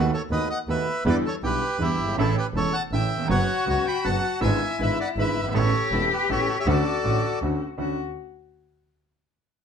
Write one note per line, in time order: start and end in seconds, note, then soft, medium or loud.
0.00 0.10 F#4 medium
0.00 0.11 B4 medium
0.13 0.21 A4 medium
0.13 0.22 C#5 medium
0.30 0.46 D#2 medium
0.30 0.47 D#2 medium
0.30 0.47 D#3 medium
0.30 0.46 A3 soft
0.30 0.46 B3 soft
0.30 0.47 F#4 soft
0.30 0.48 B4 medium
0.30 0.48 D#5 medium
0.50 0.58 D#5 medium
0.50 0.59 F#5 medium
0.68 0.83 D#2 medium
0.68 0.84 D#2 medium
0.68 0.84 D#3 medium
0.68 0.84 A3 soft
0.68 0.84 B3 soft
0.68 0.84 F#4 medium
0.68 1.03 B4 medium
0.68 1.04 E5 medium
1.05 1.21 E2 loud
1.05 1.21 E2 medium
1.05 1.21 D3 medium
1.05 1.21 E3 medium
1.05 1.21 G3 medium
1.05 1.21 B3 medium
1.05 1.21 E4 medium
1.05 1.15 B4 medium
1.10 1.17 D5 loud
1.26 1.34 A4 medium
1.26 1.35 C#5 medium
1.42 1.58 B1 medium
1.42 1.59 B2 medium
1.42 1.59 D3 soft
1.42 1.58 G3 soft
1.42 1.59 B3 soft
1.42 1.58 E4 medium
1.42 1.78 G4 medium
1.42 1.82 B4 medium
1.78 1.95 E2 medium
1.78 1.95 D3 soft
1.78 1.95 E3 medium
1.78 1.95 G3 soft
1.78 1.95 B3 soft
1.78 1.95 E4 medium
1.78 2.15 E4 medium
1.84 2.16 G4 medium
1.98 2.15 G1 medium
2.04 2.08 F#1 medium
2.09 2.13 G1 medium
2.14 2.18 G#1 medium
2.14 2.32 A1 medium
2.14 2.33 A2 medium
2.14 2.33 C#3 medium
2.14 2.33 E3 medium
2.14 2.33 A3 medium
2.14 2.35 E4 medium
2.19 2.34 A1 medium
2.19 2.33 E4 medium
2.19 2.36 A4 loud
2.37 2.45 G4 medium
2.37 2.47 B4 medium
2.54 2.70 E1 medium
2.54 2.70 E2 medium
2.54 2.70 C#3 soft
2.54 2.70 E3 soft
2.54 2.71 A3 soft
2.54 2.70 E4 medium
2.54 2.73 A4 medium
2.54 2.75 C#5 medium
2.73 2.82 F#5 medium
2.73 2.83 A5 loud
2.91 3.07 A1 medium
2.91 3.08 A1 medium
2.91 3.08 A2 medium
2.91 3.08 C#3 soft
2.91 3.08 E3 soft
2.91 3.08 A3 soft
2.91 3.08 E4 medium
2.91 3.27 E5 medium
2.91 3.28 G5 medium
3.16 3.20 D#2 soft
3.16 3.24 E2 medium
3.25 3.30 F2 medium
3.25 3.44 F#2 medium
3.25 3.44 C#3 medium
3.25 3.45 F#3 medium
3.25 3.45 B3 medium
3.25 3.45 F#4 medium
3.29 3.46 F#1 medium
3.29 4.43 F#4 medium
3.29 3.65 C#5 medium
3.29 3.69 F#5 loud
3.65 3.82 C#2 medium
3.65 3.83 C#2 medium
3.65 3.82 C#3 medium
3.65 3.82 F#3 soft
3.65 3.82 B3 soft
3.65 3.82 F#4 medium
3.65 3.85 F#4 medium
3.70 3.86 C#5 medium
3.86 4.04 G5 medium
3.86 4.06 B5 loud
4.04 4.21 F#1 medium
4.04 4.20 F#2 medium
4.04 4.20 C#3 soft
4.04 4.20 F#3 medium
4.04 4.20 B3 soft
4.04 4.20 F#4 medium
4.04 4.39 F#5 medium
4.04 4.40 A5 loud
4.41 4.57 G#1 medium
4.41 4.58 G#1 loud
4.41 4.57 G#2 medium
4.41 4.57 D3 medium
4.41 4.57 G#3 medium
4.41 4.57 B3 medium
4.41 4.57 E4 medium
4.41 5.54 E4 medium
4.41 4.77 E5 medium
4.41 4.81 G#5 loud
4.79 4.95 G#1 medium
4.79 4.96 G#1 medium
4.79 4.95 G#2 medium
4.79 4.95 D3 soft
4.79 4.95 G#3 soft
4.79 4.95 B3 soft
4.79 4.95 E4 medium
4.79 4.98 B4 medium
4.83 4.99 E5 medium
5.00 5.08 D5 medium
5.00 5.09 F#5 loud
5.16 5.32 G#1 medium
5.16 5.33 G#1 medium
5.16 5.33 G#2 medium
5.16 5.33 D3 medium
5.16 5.33 G#3 soft
5.16 5.33 B3 soft
5.16 5.34 E4 medium
5.16 5.53 B4 medium
5.21 5.54 E5 loud
5.35 5.54 G1 medium
5.42 5.45 F#1 medium
5.42 5.50 G1 medium
5.48 5.54 G#1 medium
5.54 5.70 A1 medium
5.54 5.70 A2 medium
5.54 5.70 C#3 medium
5.54 5.70 A3 medium
5.54 5.70 B3 medium
5.54 5.70 E4 medium
5.54 6.68 G4 loud
5.54 5.89 A4 medium
5.54 5.93 C#5 loud
5.92 6.07 E1 medium
5.92 6.08 E1 medium
5.92 6.08 E2 medium
5.92 6.08 C#3 medium
5.92 6.08 A3 soft
5.92 6.08 B3 soft
5.92 6.09 E4 medium
5.92 6.08 E4 medium
5.92 6.09 A4 medium
6.12 6.28 G4 medium
6.12 6.29 B4 medium
6.29 6.45 A1 medium
6.29 6.45 A2 medium
6.29 6.45 C#3 soft
6.29 6.45 A3 soft
6.29 6.45 B3 soft
6.29 6.45 E4 medium
6.29 6.56 A4 medium
6.29 6.58 C#5 medium
6.60 6.67 C#5 medium
6.60 6.67 E5 medium
6.66 6.82 D2 loud
6.66 6.82 D2 medium
6.66 6.82 D3 loud
6.66 6.82 A3 medium
6.66 6.82 C#4 medium
6.66 7.61 F#4 medium
6.66 6.83 F#4 medium
6.66 7.39 A4 medium
6.66 7.39 D5 medium
7.04 7.20 A1 medium
7.04 7.20 A2 medium
7.04 7.20 D3 soft
7.04 7.20 A3 soft
7.04 7.20 C#4 soft
7.04 7.20 F#4 medium
7.41 7.58 D2 medium
7.41 7.58 D3 medium
7.41 7.57 A3 soft
7.41 7.58 C#4 soft
7.41 7.58 F#4 medium
7.78 7.94 D2 medium
7.78 7.95 D2 medium
7.78 7.94 C#4 medium
7.78 7.94 D4 medium
7.78 7.94 F#4 medium
7.78 7.97 F#4 medium